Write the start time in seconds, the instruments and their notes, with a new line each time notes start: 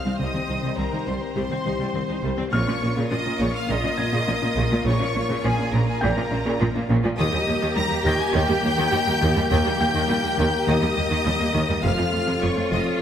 Already playing: french horn section C4 G4, viola section C5, violin section F5 F6, felt piano D#6
0.06 cello section C2, synth arpeggio sound G3, viola section C4
0.19 double bass section C2, cello section C2, synth arpeggio sound C3, viola section G3, violin section D#5 D#6
0.34 cello section C2, synth arpeggio sound D#3, viola section C4
0.48 cello section C2, double bass section C2, synth arpeggio sound D#3, viola section D#4
0.63 cello section C2, synth arpeggio sound C3, viola section G3
0.78 double bass section C2, cello section C2, synth arpeggio sound D#3, viola section C4, violin section A#4 A#5
0.93 cello section C2, synth arpeggio sound D#3, viola section D#4
1.07 cello section C2, double bass section C2, synth arpeggio sound C3, viola section G3, violin section C5 C6
1.22 violin section A#4 A#5
1.36 cello section C2, double bass section C2, synth arpeggio sound C3, viola section G3, violin section C5 C6
1.50 cello section C2, synth arpeggio sound D#3, viola section C4
1.65 cello section C2, double bass section C2, synth arpeggio sound D#3, viola section D#4
1.79 cello section C2, synth arpeggio sound C3, viola section G3
1.94 double bass section C2, cello section C2, synth arpeggio sound D#3, viola section C4
2.09 cello section C2, synth arpeggio sound D#3, viola section D#4
2.23 double bass section C2, cello section C2, synth arpeggio sound C3, viola section G3
2.38 cello section C2, synth arpeggio sound G3, viola section C4
2.52 double bass section A#1, cello section A#2, viola section C#3 F4, synth arpeggio sound A#3, french horn section A#3 A#4, violin section C#5 C#6, felt piano F6
2.67 cello section A#2, viola section F3, synth arpeggio sound C#4
2.82 double bass section A#1, cello section A#2, viola section A#3, synth arpeggio sound C#4
2.96 cello section A#2, viola section C#3, synth arpeggio sound A#3
3.10 double bass section A#1, cello section A#2, viola section F3, synth arpeggio sound C#4, violin section D#5 D#6
3.26 cello section A#2, viola section A#3, synth arpeggio sound C#4
3.39 double bass section A#1, cello section A#2, viola section C#3, synth arpeggio sound A#3, violin section C#5 C#6
3.54 violin section F5 F6
3.69 double bass section A#1, cello section A#2, viola section C#3, synth arpeggio sound A#3, violin section D#5 D#6
3.84 cello section A#2, viola section F3, synth arpeggio sound C#4
3.97 double bass section A#1, cello section A#2, viola section A#3, synth arpeggio sound C#4, felt piano G#6
4.13 cello section A#2, viola section C#3, synth arpeggio sound A#3
4.27 double bass section A#1, cello section A#2, viola section F3, synth arpeggio sound C#4
4.42 cello section A#2, viola section A#3, synth arpeggio sound C#4
4.56 double bass section A#1, cello section A#2, viola section C#3, synth arpeggio sound A#3
4.71 cello section A#2, viola section F3, synth arpeggio sound F4
4.85 double bass section A#1, cello section A#2, viola section C#3, synth arpeggio sound A#3, violin section C#5 C#6
4.99 cello section A#2, viola section F3, synth arpeggio sound C#4
5.15 double bass section A#1, cello section A#2, viola section A#3, synth arpeggio sound C#4
5.29 cello section A#2, viola section C#3, synth arpeggio sound A#3
5.44 double bass section A#1, cello section A#2, viola section F3, synth arpeggio sound C#4, violin section G#4 G#5
5.58 cello section A#2, viola section A#3, synth arpeggio sound C#4
5.72 double bass section A#1, cello section A#2, viola section C#3, synth arpeggio sound A#3, violin section A#4 A#5
5.88 violin section G#4 G#5
6.01 double bass section A#1, cello section A#2, viola section C#3, synth arpeggio sound A#3, violin section A#4 A#5, felt piano G5 G6
6.17 cello section A#2, viola section F3, synth arpeggio sound C#4
6.31 double bass section A#1, cello section A#2, viola section A#3, synth arpeggio sound C#4
6.46 cello section A#2, viola section C#3, synth arpeggio sound A#3
6.60 double bass section A#1, cello section A#2, viola section F3, synth arpeggio sound C#4
6.75 cello section A#2, viola section A#3, synth arpeggio sound C#4
6.89 double bass section A#1, cello section A#2, viola section C#3, synth arpeggio sound A#3
7.04 cello section A#2, viola section F3, synth arpeggio sound F4
7.17 double bass section D#2, cello section D#2, viola section D#3 G4, synth arpeggio sound D#3, french horn section A#3 A#4, violin section D#5 D#6
7.32 cello section D#2, viola section G3, synth arpeggio sound G3
7.47 cello section D#2, double bass section D#2, synth arpeggio sound G3, viola section A#3
7.61 cello section D#2, viola section D#3, synth arpeggio sound D#3
7.75 double bass section D#2, cello section D#2, viola section G3, synth arpeggio sound G3, violin section A#5 A#6
7.90 cello section D#2, synth arpeggio sound G3, viola section A#3
8.04 double bass section D#2, cello section D#2, viola section D#3, synth arpeggio sound D#3, violin section G5 G6, felt piano A#6
8.19 violin section G#5 G#6
8.33 double bass section D#2, cello section D#2, viola section D#3, synth arpeggio sound D#3, violin section G5 G6
8.48 cello section D#2, viola section G3, synth arpeggio sound G3
8.63 cello section D#2, double bass section D#2, synth arpeggio sound G3, viola section A#3
8.78 cello section D#2, viola section D#3, synth arpeggio sound D#3
8.91 cello section D#2, double bass section D#2, viola section G3, synth arpeggio sound G3
9.07 cello section D#2, synth arpeggio sound G3, viola section A#3
9.21 cello section D#2, double bass section D#2, viola section D#3, synth arpeggio sound D#3
9.36 cello section D#2, viola section G3, synth arpeggio sound A#3
9.50 cello section D#2, double bass section D#2, synth arpeggio sound D#3, viola section D#3, violin section G5 G6
9.65 cello section D#2, synth arpeggio sound G3, viola section G3
9.80 cello section D#2, double bass section D#2, synth arpeggio sound G3, viola section A#3, felt piano G5 G6
9.94 cello section D#2, synth arpeggio sound D#3, viola section D#3
10.08 cello section D#2, double bass section D#2, synth arpeggio sound G3, viola section G3
10.23 cello section D#2, synth arpeggio sound G3, viola section A#3
10.37 cello section D#2, double bass section D#2, synth arpeggio sound D#3, viola section D#3
10.67 cello section D#2, double bass section D#2, viola section D#3, synth arpeggio sound D#3, violin section D#5 D#6
10.81 cello section D#2, viola section G3, synth arpeggio sound G3
10.96 cello section D#2, double bass section D#2, synth arpeggio sound G3, viola section A#3
11.10 cello section D#2, viola section D#3, synth arpeggio sound D#3
11.25 cello section D#2, double bass section D#2, viola section G3, synth arpeggio sound G3
11.39 cello section D#2, synth arpeggio sound G3, viola section A#3
11.53 cello section D#2, double bass section D#2, viola section D#3, synth arpeggio sound D#3
11.68 cello section D#2, viola section G3, synth arpeggio sound A#3
11.83 double bass section F1, cello section F2, viola section C3 F4, synth arpeggio sound F3, french horn section C4 A4, violin section F5 F6
11.97 cello section F2, viola section F3, synth arpeggio sound A3
12.13 double bass section F1, cello section F2, viola section A3, synth arpeggio sound A3
12.26 cello section F2, viola section C3, synth arpeggio sound F3
12.41 double bass section F1, cello section F2, viola section F3, synth arpeggio sound A3, violin section C#5 C#6
12.56 cello section F2, viola section A3, synth arpeggio sound A3
12.70 double bass section F1, cello section F2, viola section C3, synth arpeggio sound F3, violin section D#5 D#6
12.86 violin section C#5 C#6